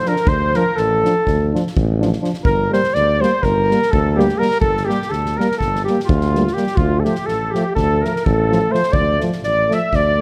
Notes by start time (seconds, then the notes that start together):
Already playing: C5
0.05 F3 D4 A#4, snare
0.16 snare
0.26 D2 C5, kick
0.54 F3 D4 A#4, snare
0.76 A1 A4, snare
1.04 F3 D4, snare
1.27 D2, kick, snare
1.53 F3 D4, snare
1.67 snare
1.76 A1, kick
2.00 F3 D4, snare
2.12 snare
2.21 F3 D4, snare
2.33 snare
2.45 G1 A#4, kick
2.70 G3 A#3 C5, snare
2.83 snare
2.94 D2 D5, snare
3.20 G3 A#3 C5, snare
3.43 G1 A#4, kick, snare
3.70 G3 A#3, snare
3.82 snare
3.91 D2 A4, kick
4.16 G3 A#3 G4, snare
4.29 snare
4.38 G3 A#3 A#4
4.42 snare
4.51 snare
4.60 G1 A4, kick
4.77 snare
4.85 G3 A#3 G4
4.89 snare
5.02 snare
5.09 D2 A4, snare
5.25 snare
5.37 G3 A#3 A#4, snare
5.51 snare
5.58 G1 A4, kick, snare
5.75 snare
5.84 G3 G4, snare
5.89 A#3
6.00 G4, snare
6.05 D2 F4
6.09 kick
6.21 snare
6.35 G3 A#3, snare
6.47 snare
6.53 A#3 G4, snare
6.57 G3
6.67 snare
6.75 D2 F4, kick
7.00 A4
7.04 F3 A3 G4, snare
7.15 snare
7.26 A1 A4, snare
7.50 G4, snare
7.55 F3 A3
7.75 D2 A4, kick, snare
8.01 F3 A3 A#4, snare
8.16 snare
8.24 A1 A4, kick
8.48 F3 A3, snare
8.69 A3 C5
8.73 F3, snare
8.83 snare
8.92 D2 D5, kick
9.18 A3, snare
9.22 F3
9.32 snare
9.43 A1 D5, snare
9.69 F3 A3 E5, snare
9.74 E5
9.92 D2 D5, kick, snare
10.18 A3